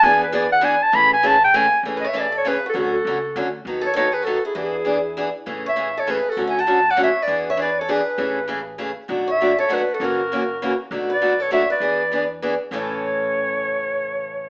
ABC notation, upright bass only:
X:1
M:3/4
L:1/8
Q:"Swing" 1/4=199
K:A
V:1 name="Upright bass" clef=bass
E,,6 | A,,,6 | A,,,6 | D,,2 C,,2 D,,2 |
^D,,6 | E,,6 | A,,,6 | D,,6 |
E,,6 | A,,,6 | B,,,6 | F,,,6 |
B,,,6 | E,,6 | A,,,6- | A,,,6 |]